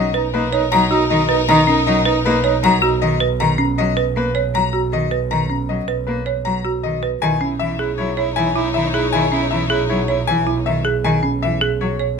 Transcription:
Already playing: double bass B1, string section D#4 A#4, grand piano D#5
0.14 soprano saxophone D#4, marimba B4
0.34 cello A#3, soprano saxophone D#4, grand piano B4
0.52 soprano saxophone D#4, marimba C#5
0.72 cello F#3, soprano saxophone D#4, grand piano A#5
0.90 soprano saxophone D#4, marimba F#4
1.10 cello D#3, soprano saxophone D#4, grand piano D#5
1.29 soprano saxophone D#4, marimba B4
1.49 cello D#3, soprano saxophone D#4, grand piano A#5
1.67 marimba C#4, soprano saxophone D#4
1.86 cello F#3, soprano saxophone D#4, grand piano D#5
2.05 soprano saxophone D#4, marimba B4
2.25 cello A#3, soprano saxophone D#4, grand piano B4
2.44 soprano saxophone D#4, marimba C#5
2.63 cello F#3, soprano saxophone D#4, grand piano A#5
2.82 soprano saxophone D#4, marimba F#4
3.01 cello D#3, soprano saxophone D#4, grand piano D#5
3.20 marimba B4
3.40 cello D#3, grand piano A#5
3.58 marimba C#4
3.78 cello F#3, grand piano D#5
3.97 marimba B4
4.16 cello A#3, grand piano B4
4.35 marimba C#5
4.54 cello F#3, grand piano A#5
4.73 marimba F#4
4.93 cello D#3, grand piano D#5
5.11 marimba B4
5.31 cello D#3, grand piano A#5
5.50 marimba C#4
5.69 cello F#3, grand piano D#5
5.88 marimba B4
6.07 cello A#3, grand piano B4
6.26 marimba C#5
6.45 cello F#3, grand piano A#5
6.65 marimba F#4
6.83 cello D#3, grand piano D#5
7.03 marimba B4
7.22 double bass B1, cello D#3, string section D#4 C#5, soprano saxophone E4, grand piano G#5
7.41 marimba C#4, soprano saxophone E4
7.59 cello E3, soprano saxophone E4, grand piano E5
7.79 soprano saxophone E4, marimba G#4
7.98 cello F#3, soprano saxophone E4, grand piano C#5
8.17 soprano saxophone E4, marimba C#5
8.36 cello E3, soprano saxophone E4, grand piano G#5
8.56 soprano saxophone E4, marimba E4
8.74 cello D#3, soprano saxophone E4, grand piano E5
8.93 soprano saxophone E4, marimba G#4
9.12 cello D#3, soprano saxophone E4, grand piano G#5
9.32 marimba C#4, soprano saxophone E4
9.51 cello E3, soprano saxophone E4, grand piano E5
9.69 soprano saxophone E4, marimba G#4
9.89 cello F#3, soprano saxophone E4, grand piano C#5
10.08 soprano saxophone E4, marimba C#5
10.27 cello E3, soprano saxophone E4, grand piano G#5
10.47 marimba E4, soprano saxophone E4
10.65 cello D#3, soprano saxophone E4, grand piano E5
10.85 marimba G#4
11.04 cello D#3, grand piano G#5
11.23 marimba C#4
11.43 cello E3, grand piano E5
11.61 marimba G#4
11.81 cello F#3, grand piano C#5
11.99 marimba C#5

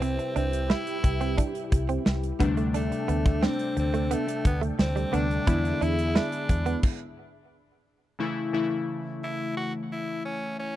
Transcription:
Already playing: fingered electric bass C2, synth keys C3 G3 E4 B4, tenor saxophone C4, analog synth pad E4 G4 G5
0.02 clean electric guitar C4, closed hi-hat
0.19 muted clean electric guitar stroke, closed hi-hat
0.36 fingered electric bass C2, tenor saxophone C4, clean electric guitar D4, closed hi-hat
0.53 closed hi-hat
0.70 clean electric guitar E4, tenor saxophone E4, snare
0.87 closed hi-hat
1.04 fingered electric bass C2, muted clean electric guitar stroke, kick, closed hi-hat
1.21 clean electric guitar C4, closed hi-hat
1.38 clean electric guitar D4, kick, closed hi-hat
1.55 closed hi-hat
1.72 fingered electric bass C2, muted clean electric guitar stroke, kick, closed hi-hat
1.89 clean electric guitar C4, closed hi-hat
2.06 fingered electric bass C2, muted clean electric guitar stroke, snare
2.23 closed hi-hat
2.39 fingered electric bass D2, synth keys C3 G3 A3 D4, clean electric guitar B3, analog synth pad D4 A4 G5, kick, closed hi-hat
2.57 clean electric guitar A3, closed hi-hat
2.74 tenor saxophone A3, clean electric guitar D4, closed hi-hat
2.92 muted clean electric guitar stroke, closed hi-hat
3.08 fingered electric bass D2, clean electric guitar B3, closed hi-hat
3.26 kick, closed hi-hat
3.43 clean electric guitar C4, tenor saxophone C4, snare
3.59 closed hi-hat
3.77 fingered electric bass D2, tenor saxophone C4, muted clean electric guitar stroke, closed hi-hat
3.94 clean electric guitar A3, closed hi-hat
4.11 tenor saxophone A3, clean electric guitar B3, closed hi-hat
4.28 muted clean electric guitar stroke, closed hi-hat
4.45 fingered electric bass D2, tenor saxophone B3, kick, closed hi-hat
4.61 clean electric guitar A3, closed hi-hat
4.79 fingered electric bass D2, tenor saxophone C4, muted clean electric guitar stroke, snare
4.96 clean electric guitar G3, closed hi-hat
5.12 fingered electric bass D2, synth keys C3 G3 A3 D4, clean electric guitar B3, tenor saxophone D4, closed hi-hat
5.31 closed hi-hat
5.46 fingered electric bass E2, synth keys D3 G#3 B3 E4, clean electric guitar E4, analog synth pad G#4 E5 B5, kick, closed hi-hat
5.65 muted clean electric guitar stroke, closed hi-hat
5.81 fingered electric bass E2, clean electric guitar D4, tenor saxophone E4, closed hi-hat
5.99 closed hi-hat
6.15 tenor saxophone D4, clean electric guitar E4, snare
6.32 closed hi-hat
6.49 fingered electric bass E2, muted clean electric guitar stroke, kick, closed hi-hat
6.66 clean electric guitar B3, closed hi-hat
6.83 kick, crash
8.19 synth keys C#3 E3 A3 E4
8.53 synth keys C#3 E3 A3 E4
9.24 tenor saxophone E4
9.57 tenor saxophone F#4
9.92 tenor saxophone E4
10.25 tenor saxophone C#4
10.59 tenor saxophone C#4

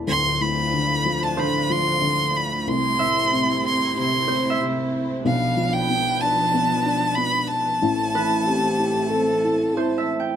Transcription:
0.06 upright piano D1 D2, string section A3 D4 F4 C5, violin C6
0.40 upright piano A2, violin B5
0.73 upright piano D3
1.06 upright piano F3
1.23 violin A5
1.37 upright piano D3, harp C5, violin B5
1.70 upright piano F3, violin C6
2.02 upright piano D3
2.36 violin B5
2.65 upright piano C2, string section C3 C4 E4 C5, violin C6
2.99 upright piano A2, harp E5
3.33 upright piano C3
3.64 upright piano C4, violin C6
3.96 upright piano C3, violin C6
4.28 upright piano C4, harp C5
4.50 harp E5
4.60 upright piano C3
5.25 upright piano B1 B2, string section F3 B3 D4 B4, violin F5
5.57 upright piano F3
5.73 violin G5
5.89 upright piano B3
6.21 upright piano D4, violin A5
6.54 upright piano B3
6.86 upright piano D4
7.16 upright piano B3, violin B5
7.47 violin A5
7.82 upright piano A1 A2, string section E3 A3 C4 A4
8.13 upright piano E3, french horn E4, harp B4
8.46 upright piano C4, french horn G4
8.79 upright piano E4
9.10 upright piano C4, french horn A4
9.44 upright piano E4
9.76 upright piano C4, french horn E4, harp C5
9.98 harp E5
10.20 harp G5

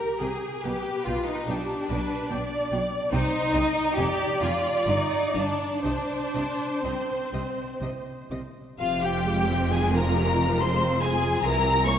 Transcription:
Already playing: viola section G4, violin section A#4
0.20 double bass section C2, cello section C3, violin section G#4 G5
0.63 double bass section B1, cello section B2, violin section G4 G5, viola section B4
1.06 double bass section B1, cello section B2, violin section F4 G5
1.28 violin section D#4
1.47 double bass section B1, cello section B2, violin section D4 G5, viola section G4
1.88 double bass section B1, cello section B2, viola section B4, violin section G5
2.29 double bass section B1, cello section B2, viola section D5, violin section G5
2.71 double bass section B1, cello section B2, violin section G5
3.11 double bass section C2, cello section C3, violin section D#4 G5, viola section C5
3.54 double bass section C2, cello section C3, viola section D#5, violin section G5
3.96 double bass section F1, cello section F2, violin section G4 G#5, viola section D5
4.41 double bass section F1, cello section F2, violin section F4 G#5
4.87 double bass section G1, cello section G2, violin section D#4 F5
5.34 double bass section G1, cello section G2, violin section D4 F5
5.84 double bass section C2, cello section C3, violin section D4 D#5, viola section C5
6.34 double bass section C2, cello section C3, violin section D#5
6.83 double bass section C2, cello section C3, violin section C4 D#5
7.33 double bass section C2, cello section C3, violin section D#5
7.81 double bass section C2, cello section C3, violin section D#5
8.31 double bass section C2, cello section C3, violin section D#5
8.79 double bass section F1, cello section F2, viola section C3 F4, violin section F4 F5
9.03 viola section F3, violin section G4 G5
9.26 viola section G#3
9.49 viola section C4
9.72 viola section G#3, violin section G#4 G#5
9.93 viola section F3, violin section A#4 A#5
10.16 viola section C3
10.38 viola section F3
10.60 viola section G#3, violin section C5 C6
10.81 viola section C4
11.02 viola section G#3, violin section G#4 G#5
11.23 viola section F3
11.44 cello section C2, double bass section C2, viola section E3 E4, violin section A#4 A#5
11.64 viola section G3
11.85 viola section A#3, violin section C#5 C#6

